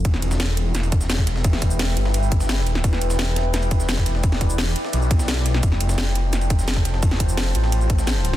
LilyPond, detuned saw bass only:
\new Staff \with { instrumentName = "Detuned saw bass" } { \clef bass \time 4/4 \key e \phrygian \tempo 4 = 172 e,,8 e,,2.~ e,,8~ | e,,8 e,,4 g,,2~ g,,8 | e,,8 e,,2.~ e,,8~ | e,,8 e,,4 r8 b,,2 |
f,,8 f,,2.~ f,,8~ | f,,8 f,,4 a,,2~ a,,8 | }